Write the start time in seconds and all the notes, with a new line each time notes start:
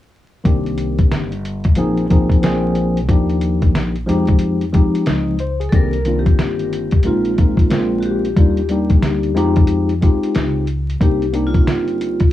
0.44 C2 D#3 A#3 C4 D4 G4, kick, closed hi-hat
0.66 closed hi-hat
0.78 closed hi-hat
0.98 kick, closed hi-hat
1.11 G1, snare, closed hi-hat
1.32 closed hi-hat
1.45 closed hi-hat
1.64 kick, closed hi-hat
1.75 A#1 F3 A#3 C4 D#4 G#4, closed hi-hat
1.97 closed hi-hat
2.10 F3 A#3 C4 D#4 G#4, kick, closed hi-hat
2.30 kick, closed hi-hat
2.42 A#1 F3 A#3 C4 D4 G#4, snare, closed hi-hat
2.75 closed hi-hat
2.97 closed hi-hat
3.08 D#2 F3 A#3 D4 D#4 G4, kick, closed hi-hat
3.30 closed hi-hat
3.41 closed hi-hat
3.62 kick, closed hi-hat
3.75 A#1, snare, closed hi-hat
3.96 closed hi-hat
4.06 F2 F3 G#3 C4 D#4 G4, closed hi-hat
4.27 kick, closed hi-hat
4.39 closed hi-hat
4.61 closed hi-hat
4.72 F3 G#3 C4 D#4 G4, kick, closed hi-hat
4.95 closed hi-hat
5.06 C#2 D#5, snare, closed hi-hat
5.39 C5, closed hi-hat
5.60 G#4, closed hi-hat
5.69 C2 D#3 A#3 A4, kick, closed hi-hat
5.74 C4 D4 G4 A#4
5.93 closed hi-hat
6.05 D#3 A#3 C4 D4 F4, closed hi-hat
6.19 G4
6.26 kick, closed hi-hat
6.39 G1, snare, closed hi-hat
6.59 closed hi-hat
6.73 closed hi-hat
6.91 kick, closed hi-hat
7.03 A#1 G#3 A#3 C4 D#4 F4, closed hi-hat
7.07 F4
7.25 closed hi-hat
7.36 G#3 A#3 C4 D#4 F4, kick, closed hi-hat
7.57 kick, closed hi-hat
7.70 A#1 G#3 A#3 C4 C#4 F4, snare, closed hi-hat
7.79 D4
8.00 F#4, closed hi-hat
8.06 G4
8.25 closed hi-hat
8.36 D#2 G3 A#3 D4 D#4 F4, kick, closed hi-hat
8.57 closed hi-hat
8.69 G3 A#3 D4 D#4 G4, closed hi-hat
8.90 kick, closed hi-hat
9.02 D2, snare, closed hi-hat
9.23 closed hi-hat
9.35 F2 G#3 C4 D#4 F4 G4, closed hi-hat
9.56 kick, closed hi-hat
9.67 closed hi-hat
9.89 closed hi-hat
10.01 G#3 C4 D#4 F4 G4, kick, closed hi-hat
10.23 closed hi-hat
10.35 C#2, snare, closed hi-hat
10.67 closed hi-hat
10.90 closed hi-hat
11.00 C2 A#3 C4 D4 D#4 G4, kick, closed hi-hat
11.22 closed hi-hat
11.33 A#3 C4 D4 D#4 G4, closed hi-hat
11.47 F4
11.54 kick, closed hi-hat
11.67 G1, snare, closed hi-hat
11.88 closed hi-hat
12.01 closed hi-hat
12.20 kick, closed hi-hat